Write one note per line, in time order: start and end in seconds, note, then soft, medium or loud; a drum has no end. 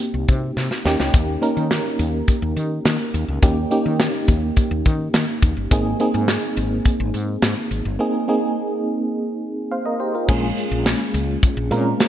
0.00 0.85 A#3 medium
0.00 0.88 C4 medium
0.00 0.86 D#4 medium
0.00 0.86 G4 medium
0.00 closed hi-hat medium
0.14 0.25 C2 medium
0.28 0.50 C3 medium
0.28 kick medium
0.28 closed hi-hat medium
0.57 0.68 C3 loud
0.57 snare medium
0.71 snare medium
0.85 0.96 D#2 loud
0.85 1.31 A#3 medium
0.85 1.31 C#4 medium
0.85 1.32 D#4 medium
0.85 1.32 G4 loud
0.85 snare medium
1.00 1.11 C#2 medium
1.00 snare medium
1.14 1.35 D#2 loud
1.14 kick loud
1.14 closed hi-hat medium
1.42 2.14 A#3 medium
1.42 2.15 C#4 medium
1.42 2.15 D#4 medium
1.42 2.15 A#4 medium
1.42 closed hi-hat medium
1.57 1.78 D#3 medium
1.57 closed hi-hat soft
1.71 snare loud
1.71 closed hi-hat medium
1.99 2.21 D#2 medium
1.99 closed hi-hat medium
2.28 kick medium
2.28 closed hi-hat medium
2.42 2.53 D#2 medium
2.56 2.78 D#3 medium
2.56 closed hi-hat medium
2.85 2.96 D#3 loud
2.85 snare loud
2.85 closed hi-hat medium
3.14 3.25 D#2 medium
3.14 closed hi-hat medium
3.28 3.39 C#2 medium
3.42 3.64 D#2 loud
3.42 3.61 A#3 medium
3.42 3.61 C#4 medium
3.42 3.61 D#4 medium
3.42 3.61 G4 medium
3.42 kick loud
3.42 closed hi-hat medium
3.71 4.43 A#3 medium
3.71 4.43 C#4 medium
3.71 4.44 D#4 medium
3.71 4.44 G4 medium
3.71 closed hi-hat medium
3.86 4.07 D#3 medium
4.00 snare loud
4.00 closed hi-hat medium
4.28 4.50 D#2 medium
4.28 kick medium
4.28 closed hi-hat medium
4.57 kick loud
4.57 closed hi-hat medium
4.71 4.82 D#2 medium
4.85 5.07 D#3 loud
4.85 kick medium
4.85 closed hi-hat medium
5.14 5.25 D#3 medium
5.14 snare loud
5.14 closed hi-hat medium
5.42 5.53 D#2 medium
5.42 kick loud
5.42 closed hi-hat medium
5.57 5.68 G1 medium
5.71 5.93 G#1 loud
5.71 5.89 A#3 medium
5.71 5.90 C4 medium
5.71 5.90 D#4 medium
5.71 5.90 G#4 medium
5.71 kick loud
5.71 closed hi-hat loud
6.00 6.72 A#3 medium
6.00 6.72 C4 medium
6.00 6.72 D#4 medium
6.00 6.73 G#4 medium
6.00 closed hi-hat medium
6.14 6.36 G#2 loud
6.14 closed hi-hat soft
6.28 snare loud
6.28 closed hi-hat medium
6.57 6.79 G#1 medium
6.57 closed hi-hat medium
6.85 kick medium
6.85 closed hi-hat medium
7.00 7.11 G#1 loud
7.14 7.35 G#2 loud
7.14 closed hi-hat medium
7.42 7.53 G#2 medium
7.42 snare loud
7.42 closed hi-hat medium
7.71 7.82 G#1 medium
7.71 closed hi-hat medium
7.85 7.96 G1 medium
7.99 8.18 A#3 medium
7.99 8.18 C4 medium
7.99 8.18 D#4 medium
7.99 8.18 G#4 medium
8.28 9.00 A#3 medium
8.28 9.01 C4 medium
8.28 9.01 D#4 medium
8.28 9.01 G#4 medium
9.71 9.85 C5 medium
9.71 9.85 F5 medium
9.86 10.00 A#4 medium
9.86 9.99 D#5 medium
10.00 10.14 G4 medium
10.00 10.13 C5 medium
10.15 10.28 F4 medium
10.15 10.42 A#4 medium
10.28 10.50 A#1 loud
10.28 11.01 G#3 medium
10.28 11.01 A#3 medium
10.28 11.01 C#4 medium
10.28 11.01 F4 medium
10.28 11.01 G#4 medium
10.28 kick loud
10.28 crash loud
10.57 closed hi-hat medium
10.71 10.93 A#1 loud
10.86 snare loud
10.86 closed hi-hat medium
10.86 tambourine medium
11.14 11.36 C#2 medium
11.14 closed hi-hat medium
11.43 kick loud
11.43 closed hi-hat medium
11.57 11.68 A#1 medium
11.71 11.93 A#2 loud
11.71 12.08 G#3 medium
11.71 12.08 A#3 medium
11.71 11.78 C4 medium
11.71 12.08 F4 medium
11.71 12.08 A#4 medium
11.71 closed hi-hat medium
11.78 12.08 C#4 medium
12.00 snare loud
12.00 closed hi-hat loud
12.00 tambourine medium